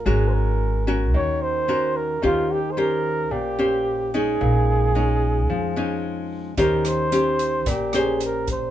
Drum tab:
HH |--------|--------|--------|xxxxxxxx|
SD |--------|--------|--------|-r---r--|
BD |--------|--------|--------|o---o--o|